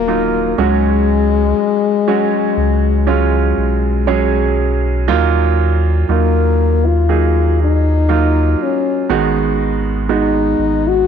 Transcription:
Already playing: sub bass D#1, grand piano F#3 A#3 D#4 F4 F#4 A#4, french horn A#3
0.08 grand piano F#3 A#3 D#4 F4
0.58 sub bass C#2, grand piano G#2 F#3 G#3 C#4 F#4, french horn G#3
2.08 grand piano F#3 G#3 C#4 F#4
2.57 sub bass C#2
3.07 grand piano F#3 G#3 C#4 F4
3.57 sub bass B1
4.07 grand piano F#3 G#3 C#4 G#4 C#5
5.08 sub bass D#2, grand piano A#2 F#3 A#3 D#4 F4
6.09 sub bass D#2, grand piano F#3 A#3 D#4 F4, french horn A#3
6.86 french horn F4
7.09 grand piano F#3 A#3 D#4 G#4
7.62 french horn D#4
8.09 grand piano F#3 A#3 D#4 F4
8.63 french horn C#4
9.09 sub bass G#1, grand piano G#2 D#3 G#3 B3 D#4 F#4
10.09 grand piano G#3 B3 D#4 F#4, french horn D#4
10.59 sub bass G#1
10.88 french horn F#4

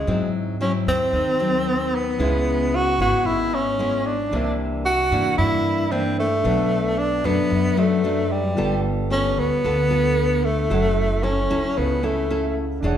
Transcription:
Already playing: tenor saxophone G#3
0.07 upright bass G#2, nylon-string guitar G#2 F#3 C4 E4
0.61 nylon-string guitar F#3 C4 E4, tenor saxophone C#4
0.87 upright bass D#2, tenor saxophone C4
1.13 upright bass D#2, nylon-string guitar D#3
1.40 nylon-string guitar F#3 C4
1.95 tenor saxophone B3
2.17 upright bass C#2, nylon-string guitar C#3 G#3 B3 E4, grand piano C#4 G#4 B4
2.23 grand piano E5
2.75 tenor saxophone F#4
2.98 upright bass G#1, nylon-string guitar G#3 B3 E4, tenor saxophone F#4
3.25 upright bass G#1, nylon-string guitar G#2, tenor saxophone E4
3.55 tenor saxophone C#4
3.79 nylon-string guitar G#3 B3 E4
4.06 tenor saxophone D4
4.29 upright bass C2, nylon-string guitar C3 E3 A#3 D4, grand piano D4 A#4 C5
4.35 grand piano E5
4.85 tenor saxophone F#4
5.11 upright bass G2, nylon-string guitar E3 A#3 D4
5.38 nylon-string guitar G2, upright bass G2, tenor saxophone E4
5.91 nylon-string guitar E3 A#3 D4, tenor saxophone C4
6.20 tenor saxophone A3
6.42 upright bass B1, nylon-string guitar B2 F#3 A3 D4, grand piano D4 A4 B4
6.48 grand piano F#5
6.99 tenor saxophone D4
7.24 upright bass F#2, nylon-string guitar F#3 A3 D4, tenor saxophone B3
7.50 nylon-string guitar F#2, upright bass F#2
7.76 nylon-string guitar F#3 A3 D4, tenor saxophone A3, grand piano D4 A4 B4 F#5
8.04 nylon-string guitar F#3 A3 D4
8.32 tenor saxophone G3
8.54 upright bass G1, nylon-string guitar G3 B3 F4 A4, grand piano F4 A4
8.59 grand piano B4 G5
9.11 nylon-string guitar B3 F4 A4, tenor saxophone C#4
9.37 upright bass D2, tenor saxophone B3
9.64 upright bass D2, nylon-string guitar D3 B3 F4 A4
9.90 nylon-string guitar B3 F4 A4
10.44 tenor saxophone A3
10.67 upright bass F#1, nylon-string guitar F#3 C#4 E4 A4, grand piano E4 A4 C#5
10.74 grand piano F#5
11.23 nylon-string guitar C#4 E4 A4, tenor saxophone C#4
11.50 upright bass C#2, nylon-string guitar C#4 E4 A4
11.77 upright bass C#2, nylon-string guitar C#3, tenor saxophone B3
12.03 tenor saxophone A3, nylon-string guitar C#4 E4 A4
12.30 nylon-string guitar C#4 E4 A4
12.80 upright bass E1, nylon-string guitar E3 D4 G#4, grand piano D4 G#4
12.85 grand piano C#5 F#5, nylon-string guitar C#5

